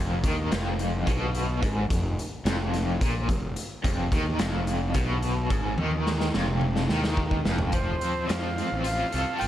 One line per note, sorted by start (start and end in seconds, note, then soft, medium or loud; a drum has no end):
0.00 0.22 F1 medium
0.00 0.22 F2 loud
0.24 0.49 D#2 medium
0.24 0.50 D#3 loud
0.24 kick loud
0.24 closed hi-hat medium
0.51 1.03 F1 medium
0.51 1.06 F2 loud
0.51 snare loud
0.51 closed hi-hat medium
0.79 closed hi-hat medium
1.06 1.59 B1 medium
1.06 1.61 B2 medium
1.06 kick loud
1.06 closed hi-hat medium
1.34 closed hi-hat medium
1.62 1.88 G#1 medium
1.62 1.89 G#2 loud
1.62 kick loud
1.62 closed hi-hat medium
1.90 2.16 F1 medium
1.90 2.12 F2 medium
1.90 kick loud
1.90 closed hi-hat medium
2.19 closed hi-hat medium
2.45 2.97 F1 loud
2.45 3.00 F2 loud
2.45 snare loud
2.45 closed hi-hat medium
2.74 snare soft
2.74 closed hi-hat medium
3.01 3.27 A#1 medium
3.01 3.28 A#2 medium
3.01 kick loud
3.01 closed hi-hat medium
3.29 3.55 F1 medium
3.29 3.51 F2 medium
3.29 kick medium
3.29 closed hi-hat medium
3.56 closed hi-hat medium
3.84 4.10 F1 medium
3.84 4.11 F2 medium
3.84 kick loud
3.84 closed hi-hat medium
4.12 4.38 D#2 medium
4.12 4.39 D#3 medium
4.12 kick medium
4.12 closed hi-hat medium
4.39 4.92 F1 medium
4.39 4.94 F2 loud
4.39 snare loud
4.39 closed hi-hat medium
4.67 closed hi-hat medium
4.94 5.47 B1 medium
4.94 5.50 B2 loud
4.94 kick medium
4.94 closed hi-hat medium
5.22 closed hi-hat medium
5.50 5.76 G#1 medium
5.50 5.77 G#2 loud
5.50 kick loud
5.50 closed hi-hat medium
5.78 6.30 D#2 medium
5.78 6.33 D#3 loud
5.78 high tom medium
5.91 high tom soft
6.07 snare medium
6.20 snare medium
6.34 6.86 F1 medium
6.34 6.89 F2 medium
6.34 snare medium
6.48 mid tom medium
6.61 mid tom medium
6.76 snare medium
6.89 7.41 D#2 medium
6.89 7.44 D#3 loud
6.89 snare medium
7.04 snare medium
7.17 kick medium
7.31 kick medium
7.45 7.71 F1 medium
7.45 7.72 F2 medium
7.45 snare medium
7.59 floor tom medium
7.72 7.94 F1 medium
7.72 8.27 F3 medium
7.72 8.29 C5 medium
7.72 kick loud
7.72 closed hi-hat medium
8.01 8.56 C4 medium
8.01 closed hi-hat medium
8.28 8.61 F2 medium
8.28 9.48 F3 medium
8.28 8.84 F5 medium
8.28 snare loud
8.28 closed hi-hat medium
8.56 9.48 C4 medium
8.56 snare soft
8.56 closed hi-hat medium
8.72 9.03 A1 medium
8.84 9.38 F4 medium
8.84 9.37 F5 medium
8.84 closed hi-hat medium
9.12 9.24 C2 medium
9.12 9.48 A4 medium
9.12 closed hi-hat medium
9.38 9.48 G1 medium
9.38 9.48 F4 medium
9.38 9.45 G5 medium
9.38 closed hi-hat medium